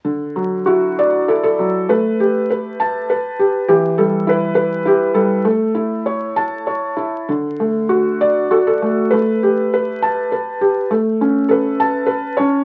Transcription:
\new Staff \with { instrumentName = "Felt piano" } { \time 3/4 \key d \major \tempo 4 = 100 << { r4 fis'4 a'16 a'8. | b'2~ b'8 r8 | g'8 a'8 b'8 r8 g'8 a'8~ | a'8 r2 r8 |
r4 fis'4 a'16 a'8. | b'2~ b'8 r8 | r4 a'4 b'8 cis''8 | } \\ { d8 fis8 e'8 d''8 e'8 fis8 | a8 g'8 b'8 a''8 b'8 g'8 | e8 g8 e'8 b'8 e'8 g8 | a8 e'8 cis''8 a''8 cis''8 e'8 |
d8 a4 d''8 fis'8 a8 | a8 g'8 b'8 a''8 b'8 g'8 | a8 cis'8 b'8 a''4 cis'8 | } >> }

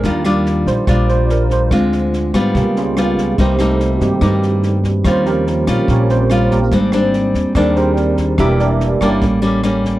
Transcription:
<<
  \new Staff \with { instrumentName = "Tine electric piano" } { \time 4/4 \key ees \lydian \tempo 4 = 144 bes'8 r4 c''8 d''8 c''8 bes'8 c''8~ | c''8 r4. <bes bes'>8 <aes des' f' aes'>4. | <c' ees' g' c''>8 <a a'>4 <g c' ees' ges' g'>8 r2 | <c' c''>8 <bes f' g' bes'>4. <des' g' bes' des''>8 <c' c''>4 <bes f' g' bes'>8 |
r2 <d' aes' bes' d''>8 <c' g' bes' c''>4. | <e' g' bes' e''>8 <d' g' bes' d''>4 <d' g' bes' d''>8 r2 | }
  \new Staff \with { instrumentName = "Tine electric piano" } { \time 4/4 \key ees \lydian <g d' f'>2~ <g d' f'>8 <g d' f'>8 r4 | <aes c' f'>2 <ces' f' g'>4. r8 | r4. <ees bes>2~ <ees bes>8 | r8 <f g des'>4. r2 |
<g bes c' d'>4. r2 r8 | <g bes d'>2 <g bes cis'>4. r8 | }
  \new Staff \with { instrumentName = "Nylon-string guitar" } { \time 4/4 \key ees \lydian << { <g d' f'>8 <g d' f'>4. <g d' f'>2 | <aes c' f'>4. <g ces' f'>4. <g ces' f'>4 | <g bes ees'>8 <g bes ees'>4. <g bes ees'>4. r8 | <g des' f'>4. <g des' f'>4. <g des' f'>8 r8 |
<g c' d'>8 <g c' d'>4. <g c' d'>2 | <bes d' g'>4. <g bes des'>4 <g bes cis'>8 <g bes cis'>4 | } \\ { ees2 bes,2 | d2 des2 | c2 g,2 | ees2 bes,2 |
aes,2 ees2 | e2 a,2 | } >> }
  \new Staff \with { instrumentName = "Upright bass" } { \clef bass \time 4/4 \key ees \lydian ees,4. bes,,16 r16 bes,,2 | d,4. aes,8 des,2 | c,4. g,16 r16 g,2 | ees,4. bes,,16 r16 bes,,2 |
aes,,4. ees,16 r16 ees,2 | e,,4. g,,8 a,,2 | }
  \new DrumStaff \with { instrumentName = "Drums" } \drummode { \time 4/4 <bd sn>8 <ss sn>8 sn8 <bd sn>8 <bd ss sn>8 sn8 sn8 <bd sn>8 | <bd ss sn>8 sn8 sn8 <bd ss sn>8 <bd sn>8 sn8 <ss sn>8 <bd sn>8 | <bd sn>8 <ss sn>8 sn8 <bd sn>8 <bd ss sn>8 sn8 sn8 <bd sn>8 | <bd ss sn>8 sn8 sn8 <bd ss sn>8 <bd sn>8 sn8 <ss sn>8 <bd sn>8 |
<bd sn>8 <ss sn>8 sn8 <bd sn>8 <bd ss sn>8 sn8 sn8 <bd sn>8 | <bd ss sn>8 sn8 sn8 <bd ss sn>8 <bd sn>8 sn8 <ss sn>8 <bd sn>8 | }
>>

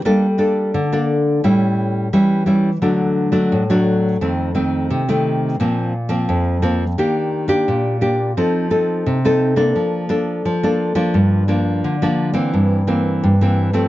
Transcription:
\new Staff \with { instrumentName = "Nylon-string guitar" } { \time 4/4 \key f \mixolydian \tempo 4 = 86 << { <bes d' a'>16 r16 <bes d' a'>8. <bes d' a'>8. <g cis' e'>4 <g cis' e'>8 <g cis' e'>16 r16 | <fis a d'>8. <fis a d'>8 <fis a d'>8. <ees a c'>8 <ees a c'>8. <ees a c'>8. | \key bes \major <f bes c'>8 r16 <f bes c'>8. <f bes c'>16 r16 <bes d' g'>8. <bes d' g'>8. <bes d' g'>8 | <c' ees' a'>8 <c' ees' a'>8. <c' ees' a'>8 <bes d' a'>8. <bes d' a'>8. <bes d' a'>8 <f bes d'>16~ |
<f bes d'>8 <f bes d'>8. <f bes d'>8 <e bes c'>8. <e bes c'>8. <e bes c'>8 <f a c'>16 | } \\ { g4 d4 a,4 e4 | d4 a,4 f,4 c4 | bes,4 f,4 ees4 bes,4 | f4 c4 f4 f4 |
g,4 d4 g,4 g,4 | } >> }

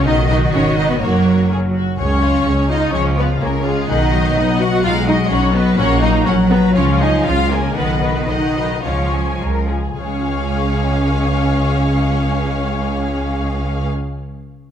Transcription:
<<
  \new Staff \with { instrumentName = "Violin section" } { \time 4/4 \key des \mixolydian \tempo 4 = 122 ees''8 ees''8 des''8 ees''16 ces''16 bes'4 r4 | des''4. ees''8 des''8 ces''8 bes'8 aes'8 | ees''4. ges''8 f''8 ees''8 des''8 ces''8 | des''8 ees''8 des''8 ces''8 des''8 ees''8 f''8 bes'8 |
ces''8 ces''8 ees''4 des''4 r4 | des''1~ | des''1 | }
  \new Staff \with { instrumentName = "Violin section" } { \time 4/4 \key des \mixolydian <ges' ees''>2 <ges' des''>4 aes'8 ges'8 | <aes' des''>8 <f' f''>8 <aes' des''>8 <f' f''>8 <aes' des''>8 <f' f''>8 <aes' des''>8 <f' f''>8 | <ees' ges''>8 <ges' ees''>8 <ees' ges''>8 <ges' ees''>8 <ees' ges''>8 <ges' ees''>8 <ees' ges''>8 <ges' ees''>8 | <bes' ges''>8 <ges' bes''>8 <bes' ges''>8 <ges' bes''>8 <f' f''>8 <aes' aes''>8 <f' f''>8 <aes' aes''>8 |
<ees'' ges''>8 <ces'' ees''>8 <ees'' ges''>8 <ces'' ees''>8 <f' f''>8 <aes' aes''>8 bes'8 aes'8 | <aes' f''>1~ | <aes' f''>1 | }
  \new Staff \with { instrumentName = "Harp" } { \time 4/4 \key des \mixolydian << { ces8 ees'8 ces''8 ges'8 ges,8 des'8 bes'8 ges'8 | des8 des'8 aes'8 f'8 aes8 des'8 aes'8 f'8 | ces8 ges8 ces''8 ges'8 ces'8 ges8 ces''8 ges'8 | bes,8 ges8 des''8 ges'8 des8 aes8 f''8 f'8 |
ces8 ces'8 ees''8 ges'8 des8 aes8 f''8 f'8~ | f'1~ | f'1 | } \\ { r1 | r1 | r1 | r1 |
r1 | <des aes des' f' f''>1~ | <des aes des' f' f''>1 | } >> }
  \new Staff \with { instrumentName = "Viola section" } { \time 4/4 \key des \mixolydian ees'8 ees'8 des'8 ees'16 ces'16 bes4 r4 | des'4. ees'8 des'8 ces'8 bes8 aes8 | ees'4. ges'8 f'8 ees'8 des'8 ces'8 | des'8 ees'8 des'8 ces'8 des'8 ees'8 f'8 bes8 |
ces'8 ces'8 ees'4 des'4 r4 | des'1~ | des'1 | }
  \new Staff \with { instrumentName = "Cello section" } { \clef bass \time 4/4 \key des \mixolydian ees2 ges4. r8 | r2 f4 des4 | ees4 ces'4 aes4 ges4 | bes4 ges4 f4 des4 |
ees2 f4. r8 | des,1~ | des,1 | }
  \new Staff \with { instrumentName = "Double bass section" } { \clef bass \time 4/4 \key des \mixolydian ces,4 aes,,4 ges,,4. r8 | des,4 des,4 des,4 des,4 | ces,4 ces,4 ces,4 ces,4 | bes,,4 bes,,4 des,4 des,4 |
ces,4 ces,4 des,4 des,4 | des,1~ | des,1 | }
>>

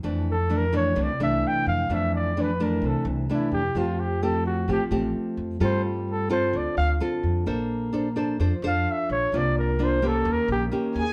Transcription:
<<
  \new Staff \with { instrumentName = "Violin section" } { \time 4/4 \key f \major \tempo 4 = 129 r1 | r1 | r1 | r1 |
r1 | r2. r8 gis''8 | }
  \new Staff \with { instrumentName = "Flugelhorn" } { \time 4/4 \key f \major r8 a'8 bes'8 cis''8 d''8 e''8 g''8 f''8 | e''8 d''8 b'8 bes'8 a'8 c'8 e'8 g'8 | f'8 g'8 a'8 fis'8 g'8 r4. | c''8 f'8 a'8 c''8 d''8 f''8 r4 |
r2 r8 f''8 e''8 cis''8 | d''8 bes'8 c''8 a'8 bes'8 g'8 r8 gis'8 | }
  \new Staff \with { instrumentName = "Nylon-string guitar" } { \time 4/4 \key f \major << { <e a d'>8 r8 <e a d'>8 <e a d'>8 <e a d'>8 <e a d'>4. | <e a d'>4 <e a d'>8 <e a d'>4. <e a d'>8 r8 | <a c' g'>4 <a c' g'>4 <a c' g'>8 <a c' g'>4. | <c' f' a'>4. <c' f' a'>4. <c' f' a'>4 |
<d' a' c''>4 <d' a' c''>8 <d' a' c''>8 <d' a' c''>8 <d' a' c''>4. | <bes d' f'>4 <bes d' f'>8 <bes cis' g'>4. <bes des' g'>8 r8 | } \\ { f,2 c2 | f,2 c2 | f2 f2 | g2 d2 |
bes2 f2 | c2 ees2 | } >> }
  \new Staff \with { instrumentName = "Upright bass" } { \clef bass \time 4/4 \key f \major f,2 c,16 r16 c,8 r8 f,8 | f,2 c,16 r16 c,8 r8 f,8 | f,2 a,,16 r16 a,,8 r8 f,8 | g,2 d,16 r16 d,8 r8 f,8 |
bes,,2 f,16 r16 f,8 r8 bes,,8 | c,2 ees,16 r16 bes,,8 r8 ees,8 | }
>>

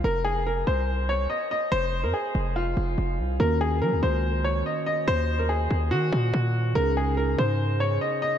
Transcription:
<<
  \new Staff \with { instrumentName = "Upright piano" } { \time 4/4 \key f \phrygian \tempo 4 = 143 bes'8 aes'8 bes'8 c''4 des''8 ees''8 ees''8 | c''8. bes'16 aes'4 f'2 | bes'8 aes'8 bes'8 c''4 des''8 ees''8 ees''8 | c''8. bes'16 aes'4 ges'2 |
bes'8 aes'8 bes'8 c''4 des''8 ees''8 ees''8 | }
  \new Staff \with { instrumentName = "Tine electric piano" } { \time 4/4 \key f \phrygian r1 | r1 | <ees bes des' ges'>1~ | <ees bes des' ges'>1 |
<des des' ees' aes'>1 | }
  \new Staff \with { instrumentName = "808-style bass" } { \clef bass \time 4/4 \key f \phrygian f,,4. c,4. r4 | f,,8. f,16 r8 f,,4 f,,8 f,,8 c,8 | ees,4 ges16 ees,16 des,4. r4 | ees,4. ees,8 ees8 bes,8 bes,4 |
des,4. aes,4. r4 | }
>>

